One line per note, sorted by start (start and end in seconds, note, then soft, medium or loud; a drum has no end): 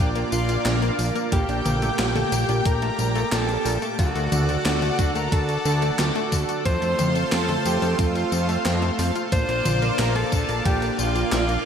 0.00 0.24 A#1 medium
0.00 1.28 A#2 medium
0.00 0.13 F3 medium
0.00 1.28 A#3 medium
0.00 3.95 A#3 medium
0.00 1.28 D4 medium
0.00 1.28 F4 loud
0.00 1.30 D5 medium
0.00 1.28 F5 medium
0.00 1.30 D6 medium
0.16 0.30 A#3 loud
0.16 closed hi-hat soft
0.16 tambourine soft
0.32 0.58 A#1 medium
0.32 0.48 D4 medium
0.32 0.95 F4 medium
0.32 0.95 F5 medium
0.32 closed hi-hat soft
0.32 tambourine medium
0.49 0.65 F4 medium
0.49 closed hi-hat soft
0.49 tambourine soft
0.66 0.91 A#1 loud
0.66 0.74 D4 medium
0.66 snare loud
0.66 clap loud
0.66 closed hi-hat loud
0.66 tambourine soft
0.82 0.96 A#3 loud
0.82 closed hi-hat soft
0.82 tambourine soft
0.99 1.12 A#1 medium
0.99 1.13 F3 medium
0.99 open hi-hat medium
0.99 tambourine medium
1.15 1.30 A#3 loud
1.15 closed hi-hat soft
1.15 tambourine soft
1.32 1.45 A#1 medium
1.32 2.28 A#2 medium
1.32 2.28 A#3 medium
1.32 1.48 A#3 medium
1.32 2.28 G4 medium
1.32 1.95 G4 loud
1.32 2.28 A4 medium
1.32 1.95 G5 loud
1.32 3.96 G5 medium
1.32 6.62 D6 medium
1.32 kick loud
1.32 closed hi-hat loud
1.32 tambourine soft
1.49 1.62 A#1 medium
1.49 1.65 D4 medium
1.49 closed hi-hat soft
1.49 tambourine soft
1.65 1.91 A#1 medium
1.65 1.74 A#3 medium
1.65 closed hi-hat medium
1.65 mid tom loud
1.65 tambourine medium
1.82 1.96 A3 loud
1.82 closed hi-hat soft
1.82 tambourine soft
1.99 2.24 A#1 medium
1.99 2.13 G3 medium
1.99 2.67 G4 loud
1.99 2.62 G5 loud
1.99 snare loud
1.99 clap medium
1.99 closed hi-hat medium
1.99 tambourine soft
2.16 2.30 A3 loud
2.16 closed hi-hat soft
2.16 mid tom medium
2.16 tambourine soft
2.32 2.45 A#1 medium
2.32 3.95 A#2 loud
2.32 3.95 A#3 medium
2.32 2.48 A#3 medium
2.32 3.95 G4 medium
2.32 closed hi-hat medium
2.32 tambourine medium
2.49 2.62 A#1 medium
2.49 2.65 D4 medium
2.49 closed hi-hat soft
2.49 tambourine soft
2.65 2.91 A#1 medium
2.65 2.74 A#3 medium
2.65 3.34 A#4 loud
2.65 3.28 A#5 loud
2.65 kick loud
2.65 closed hi-hat loud
2.65 tambourine soft
2.82 2.96 A3 loud
2.82 closed hi-hat soft
2.82 tambourine soft
2.99 3.24 A#1 medium
2.99 3.13 G3 medium
2.99 closed hi-hat soft
2.99 tambourine medium
3.15 3.30 A3 loud
3.15 closed hi-hat soft
3.15 tambourine soft
3.32 3.58 A#1 loud
3.32 3.48 A#3 medium
3.32 3.82 A4 loud
3.32 3.79 A5 loud
3.32 snare loud
3.32 clap medium
3.32 closed hi-hat loud
3.32 tambourine soft
3.49 3.65 D4 medium
3.49 closed hi-hat soft
3.49 tambourine soft
3.65 3.78 A#1 medium
3.65 3.74 A#3 medium
3.65 open hi-hat medium
3.65 tambourine medium
3.82 3.96 A3 loud
3.82 closed hi-hat soft
3.82 tambourine soft
3.99 4.12 D2 loud
3.99 4.95 D3 medium
3.99 4.13 F#3 medium
3.99 4.95 D4 medium
3.99 4.95 F#4 medium
3.99 4.62 F#4 loud
3.99 4.95 A4 medium
3.99 9.28 A4 medium
3.99 6.63 D5 medium
3.99 6.63 F#5 medium
3.99 4.62 F#5 loud
3.99 kick loud
3.99 closed hi-hat loud
3.99 tambourine soft
4.15 4.28 D2 medium
4.15 4.30 A3 loud
4.15 closed hi-hat soft
4.15 tambourine soft
4.32 4.58 D2 loud
4.32 4.48 D4 medium
4.32 closed hi-hat medium
4.32 mid tom loud
4.32 tambourine medium
4.49 4.65 F#4 medium
4.49 closed hi-hat soft
4.49 tambourine soft
4.65 4.91 D2 medium
4.65 4.74 D4 medium
4.65 5.17 F#4 loud
4.65 5.12 F#5 loud
4.65 snare loud
4.65 clap medium
4.65 closed hi-hat medium
4.65 tambourine soft
4.82 4.96 A3 loud
4.82 closed hi-hat soft
4.82 mid tom medium
4.82 tambourine soft
4.99 5.12 D2 medium
4.99 5.62 D3 medium
4.99 5.13 F#3 medium
4.99 5.62 D4 medium
4.99 5.62 F#4 medium
4.99 5.62 A4 loud
4.99 kick loud
4.99 closed hi-hat medium
4.99 tambourine medium
5.15 5.28 D2 medium
5.15 5.30 A3 loud
5.15 5.34 A#4 loud
5.15 5.31 A#5 loud
5.15 closed hi-hat soft
5.15 tambourine soft
5.32 5.58 D2 medium
5.32 5.48 D4 medium
5.32 6.32 A4 loud
5.32 6.28 A5 loud
5.32 kick loud
5.32 closed hi-hat loud
5.32 tambourine soft
5.49 5.65 F#4 medium
5.49 closed hi-hat soft
5.49 tambourine soft
5.65 5.91 D2 loud
5.65 6.62 D3 loud
5.65 5.74 D4 medium
5.65 6.62 D4 medium
5.65 6.62 F#4 medium
5.65 6.62 A4 loud
5.65 closed hi-hat soft
5.65 tambourine medium
5.82 5.96 A3 loud
5.82 closed hi-hat soft
5.82 tambourine soft
5.99 6.12 D2 medium
5.99 6.13 F#3 medium
5.99 snare loud
5.99 clap loud
5.99 closed hi-hat loud
5.99 tambourine soft
6.15 6.30 A3 loud
6.15 closed hi-hat soft
6.15 tambourine soft
6.32 6.45 D2 loud
6.32 6.48 D4 medium
6.32 kick medium
6.32 open hi-hat medium
6.32 tambourine medium
6.49 6.65 F#4 medium
6.49 closed hi-hat soft
6.49 tambourine soft
6.65 6.78 F2 loud
6.65 6.80 F3 medium
6.65 7.62 A3 medium
6.65 7.62 C4 medium
6.65 7.62 F4 medium
6.65 9.30 C5 medium
6.65 7.34 C5 loud
6.65 11.65 F5 medium
6.65 9.29 C6 medium
6.65 7.28 C6 loud
6.65 kick loud
6.65 closed hi-hat medium
6.65 tambourine soft
6.82 6.95 F2 medium
6.82 6.96 A3 loud
6.82 closed hi-hat soft
6.82 tambourine soft
6.99 7.24 F2 medium
6.99 7.15 C4 medium
6.99 closed hi-hat medium
6.99 mid tom loud
6.99 tambourine medium
7.15 7.31 F4 medium
7.15 closed hi-hat soft
7.15 tambourine soft
7.32 7.58 F2 medium
7.32 7.41 C4 medium
7.32 7.65 A4 loud
7.32 7.63 A5 loud
7.32 snare loud
7.32 clap medium
7.32 closed hi-hat medium
7.32 tambourine soft
7.49 7.63 A3 loud
7.49 closed hi-hat soft
7.49 mid tom medium
7.49 tambourine soft
7.65 7.78 F2 medium
7.65 7.80 F3 medium
7.65 9.28 A3 loud
7.65 9.28 C4 medium
7.65 9.28 F4 loud
7.65 8.01 G4 medium
7.65 7.97 G5 loud
7.65 closed hi-hat medium
7.65 tambourine medium
7.82 7.95 F2 medium
7.82 7.96 A3 loud
7.82 closed hi-hat soft
7.82 tambourine soft
7.99 8.24 F2 medium
7.99 8.15 C4 medium
7.99 8.99 F4 medium
7.99 8.95 F5 medium
7.99 kick loud
7.99 closed hi-hat medium
7.99 tambourine soft
8.15 8.31 F4 medium
8.15 closed hi-hat soft
8.15 tambourine soft
8.32 8.58 F2 medium
8.32 8.41 C4 medium
8.32 closed hi-hat soft
8.32 tambourine medium
8.49 8.63 A3 loud
8.49 closed hi-hat soft
8.49 tambourine soft
8.65 8.91 F2 loud
8.65 8.80 F3 medium
8.65 snare loud
8.65 clap medium
8.65 closed hi-hat medium
8.65 tambourine soft
8.82 8.96 A3 loud
8.82 closed hi-hat soft
8.82 tambourine soft
8.99 9.12 F2 loud
8.99 9.15 C4 medium
8.99 open hi-hat medium
8.99 tambourine medium
9.16 9.31 F4 medium
9.16 closed hi-hat soft
9.16 tambourine soft
9.32 9.45 A#1 loud
9.32 10.28 A#2 medium
9.32 11.65 A#3 medium
9.32 10.28 A#3 medium
9.32 9.41 D4 medium
9.32 10.28 D4 medium
9.32 10.28 F4 medium
9.32 10.00 C5 loud
9.32 11.65 D5 medium
9.32 9.95 C6 loud
9.32 11.65 D6 medium
9.32 kick loud
9.32 closed hi-hat medium
9.32 tambourine soft
9.49 9.62 A#1 medium
9.49 9.63 A#3 loud
9.49 closed hi-hat soft
9.49 tambourine soft
9.65 9.91 A#1 medium
9.65 9.79 F3 medium
9.65 closed hi-hat medium
9.65 mid tom loud
9.65 tambourine medium
9.82 9.96 A#3 loud
9.82 closed hi-hat soft
9.82 tambourine soft
9.99 10.24 A#1 medium
9.99 10.15 D4 medium
9.99 10.15 A#4 loud
9.99 10.14 A#5 loud
9.99 snare loud
9.99 clap medium
9.99 closed hi-hat medium
9.99 tambourine soft
10.15 10.31 F4 medium
10.15 10.62 A4 loud
10.15 10.62 A5 loud
10.15 closed hi-hat soft
10.15 tambourine soft
10.32 10.45 A#1 medium
10.32 11.65 A#2 medium
10.32 11.65 A#3 medium
10.32 10.41 D4 medium
10.32 11.65 D4 medium
10.32 11.65 F4 loud
10.32 kick loud
10.32 closed hi-hat medium
10.32 tambourine medium
10.49 10.62 A#1 medium
10.49 10.63 A#3 loud
10.49 closed hi-hat soft
10.49 tambourine soft
10.65 10.91 A#1 medium
10.65 10.80 F3 medium
10.65 11.00 G4 loud
10.65 10.97 G5 loud
10.65 kick loud
10.65 closed hi-hat medium
10.65 tambourine soft
10.82 10.96 A#3 loud
10.82 closed hi-hat soft
10.82 tambourine soft
10.99 11.24 A#1 medium
10.99 11.15 D4 medium
10.99 11.32 F4 loud
10.99 11.30 F5 loud
10.99 closed hi-hat soft
10.99 tambourine medium
11.16 11.31 F4 medium
11.16 closed hi-hat soft
11.16 tambourine soft
11.32 11.58 A#1 loud
11.32 11.41 D4 medium
11.32 11.65 F4 loud
11.32 11.65 F5 loud
11.32 snare loud
11.32 clap loud
11.32 closed hi-hat medium
11.32 tambourine soft
11.49 11.63 A#3 loud
11.49 closed hi-hat soft
11.49 tambourine soft